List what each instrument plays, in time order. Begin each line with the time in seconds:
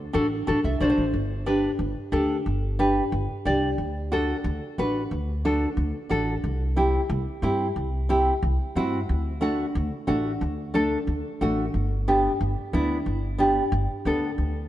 0.13 upright bass A1, nylon-string guitar D4 F#4 A4
0.47 upright bass A1, nylon-string guitar D4 F#4 A4
0.64 upright bass C2, nylon-string guitar E5
0.80 upright bass B1, nylon-string guitar D4 F#4 C5 D5
0.90 nylon-string guitar C5
0.98 upright bass A1
1.14 upright bass G1
1.46 nylon-string guitar D4 G4 B4
1.79 upright bass G1
2.12 upright bass D2, nylon-string guitar D4 G4 A4
2.46 upright bass G1
2.79 nylon-string guitar D4 G4 B4
3.12 upright bass G1
3.45 upright bass C2, nylon-string guitar D4 G4 D5
3.78 upright bass D2
4.12 nylon-string guitar D4 F#4 A4
4.44 upright bass D2
4.78 upright bass A1, nylon-string guitar D4 F#4 B4
5.11 upright bass D2
5.45 nylon-string guitar D4 F#4 A4
5.77 upright bass D2
6.09 upright bass A1, nylon-string guitar D4 F#4 A4
6.44 upright bass C2
6.76 nylon-string guitar C4 E4 G4
7.10 upright bass C2
7.42 upright bass G2, nylon-string guitar C4 E4 G4
7.76 upright bass C2
8.09 nylon-string guitar C4 E4 G4
8.43 upright bass C2
8.75 upright bass G2, nylon-string guitar C4 E4 F#4
9.09 upright bass D2
9.41 nylon-string guitar A3 D4 F#4
9.75 upright bass D2
10.07 upright bass A1, nylon-string guitar A3 D4 F#4
10.41 upright bass D2
10.74 nylon-string guitar A3 D4 A4
11.07 upright bass D2
11.41 upright bass A1, nylon-string guitar A3 D4 F#4
11.74 upright bass G1
12.08 nylon-string guitar B3 D4 G4
12.41 upright bass G1
12.73 upright bass D2, nylon-string guitar B3 D4 E4
13.06 upright bass G1
13.38 nylon-string guitar B3 D4 G4
13.72 upright bass G1
14.05 upright bass D2, nylon-string guitar B3 D4 A4
14.38 upright bass D2